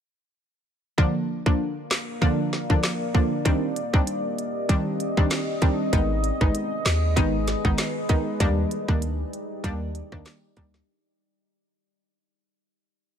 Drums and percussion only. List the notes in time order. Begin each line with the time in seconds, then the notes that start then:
0.98 kick
1.46 kick
1.91 snare, clap
2.22 kick
2.53 snare
2.70 kick
2.83 snare, clap
3.15 kick
3.45 kick, closed hi-hat
3.76 closed hi-hat
3.94 kick
4.07 closed hi-hat
4.38 closed hi-hat
4.69 kick, closed hi-hat
5.00 closed hi-hat
5.17 kick
5.31 snare, clap, closed hi-hat
5.62 kick, closed hi-hat
5.93 kick, closed hi-hat
6.24 closed hi-hat
6.41 kick
6.55 closed hi-hat
6.86 snare, clap, closed hi-hat
7.17 kick, closed hi-hat
7.47 snare, closed hi-hat
7.65 kick
7.78 snare, clap, closed hi-hat
8.09 kick, closed hi-hat
8.40 kick, closed hi-hat
8.71 closed hi-hat
8.88 kick
9.02 closed hi-hat
9.33 closed hi-hat
9.64 kick, closed hi-hat
9.95 closed hi-hat
10.12 kick, cross-stick
10.26 snare, clap, closed hi-hat
10.57 kick, closed hi-hat
10.74 snare